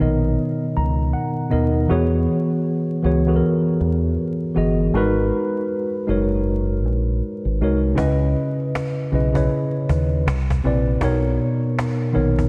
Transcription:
Already playing: B2 C#5
0.00 A#1 D#3 B3 D#4 A#4 D#5
0.77 C#2 A#5
1.14 F#5
1.50 D#2 B2 B3 D#4 A#4 D#5
1.88 E2 E3 B3 F#4 G#4 C#5
3.03 C#2 E3 B3 F#4 G#4 C#5
3.26 E3 B3 F#4 G#4 A4
3.36 A#4
3.80 E2
4.54 G1 E3 B3 F#4 G#4 D#5
4.94 G#1 G#3 D#4 F#4 A#4 B4
6.07 F#1 G#3 D#4 F#4 A#4 C#5
6.85 A#1
7.45 G#1
7.61 C2 G#3 D#4 F#4 A#4 C#5
7.95 C#2 C#3 C#4 E4 B4 D#5, cajon bass
8.20 cajon slap
8.36 cajon slap
8.60 cajon slap
8.75 cajon slap
8.97 cajon slap
9.11 B1 C#3 C#4 E4 B4, cajon slap
9.15 D#5
9.33 C#3 C#4 E4 B4 C#5, cajon bass
9.50 cajon slap
9.72 cajon slap
9.89 D#2, cajon bass
10.09 cajon slap
10.26 C2, cajon slap
10.50 cajon bass
10.64 A#1 C3 C4 E4 B4 D5, cajon slap
10.85 cajon slap
11.01 B1 B2 B3 D#4 A#4 C#5, cajon bass
11.23 cajon slap
11.40 cajon slap
11.63 cajon slap
11.79 cajon slap
12.00 cajon slap
12.12 A#1 D#3 B3 D#4 A#4 C#5, cajon slap
12.39 cajon bass

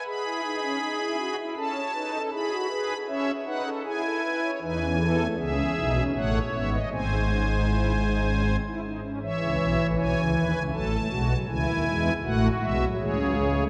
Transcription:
0.06 G#4 B5
0.25 E4
0.44 D#4
0.63 C#4
0.81 D#4
1.00 E4
1.19 F#4
1.38 E4
1.57 C#4 A4 A5
1.76 C#5
1.94 D#4 B4
2.14 A4
2.32 E4 G#4 B5
2.50 F#4
2.69 G#4 B4
3.07 C#4 C#5 E5
3.45 D#4 B4 F#5
3.65 A4
3.84 E4 G#4 G#5
4.04 A4
4.24 B4
4.43 C#5
4.62 E2 E3 D#4 B4 G#5
4.81 C#4
5.00 B3 A4
5.19 A3
5.38 C#2 C#3 B3 G#4 E5
5.57 C#4
5.77 B1 B2 D#4
5.96 C#4
6.15 A1 A2 A3 C#5 F#5
6.54 G#1 G#2 B3 E5
6.73 D#5
6.92 G#1 G#2 C4 C5 G#5
7.29 C#4
7.49 D#4
7.68 E4
8.06 D#4
8.25 C#4
8.44 C4
8.64 E4
8.84 D#4
9.03 C#4
9.22 E3 C#5 E5
9.40 C#2 C#3
9.60 B1 B2
9.78 A1 A2
9.97 B1 B2 C#5 G#5
10.16 C#2 C#3
10.35 D#2 D#3 B4
10.54 C#2 C#3
10.72 A1 A2 F#3 A4 A5
10.91 A3
11.10 B1 B2 G#3 F#4
11.29 F#3
11.48 C#2 C#3 E3 E4 G#5
11.67 D#2 D#3
11.86 E2 E3 G#3
12.24 A1 A2 A3 F#4 F#5
12.61 B1 B2 G#3 E5
12.81 F#3
12.99 C#2 C#3 E3 G#4 C#5
13.18 F#3
13.37 G#3
13.56 A3

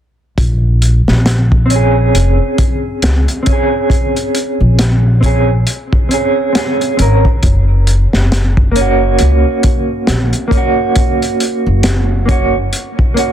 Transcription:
0.38 A#1, kick, closed hi-hat
0.82 closed hi-hat
1.08 A#1, snare
1.26 snare, closed hi-hat
1.52 kick
1.66 C4
1.70 C#4, closed hi-hat
1.76 G#4
2.15 F1, closed hi-hat
2.58 kick, closed hi-hat
3.02 C#2, snare, closed hi-hat
3.28 closed hi-hat
3.43 C4, closed hi-hat
3.47 C#4, kick
3.53 G#4
3.90 kick, closed hi-hat
4.16 closed hi-hat
4.35 closed hi-hat
4.60 A#1
4.79 snare, closed hi-hat
5.21 C4 C#4, kick, closed hi-hat
5.26 G#4
5.67 closed hi-hat
5.93 kick
6.09 C4 C#4, closed hi-hat
6.14 G#4
6.53 C4 C#4, snare, closed hi-hat
6.58 G#4
6.81 closed hi-hat
6.97 G#1 C4 C#4, closed hi-hat
7.02 A#4
7.25 kick
7.43 F#1, kick, closed hi-hat
7.87 closed hi-hat
8.13 F#1, snare
8.32 snare, closed hi-hat
8.57 kick
8.71 A#3
8.76 C#4, closed hi-hat
8.81 F#4
9.19 C#2, closed hi-hat
9.63 kick, closed hi-hat
10.07 A#1, snare, closed hi-hat
10.33 closed hi-hat
10.48 A#3, kick
10.52 C#4, closed hi-hat
10.57 F#4
10.96 kick, closed hi-hat
11.22 closed hi-hat
11.40 closed hi-hat
11.66 F#1
11.83 snare, closed hi-hat
12.26 A#3 C#4, kick, closed hi-hat
12.31 F#4
12.73 closed hi-hat
12.99 kick
13.14 A#3 C#4, closed hi-hat
13.19 F#4

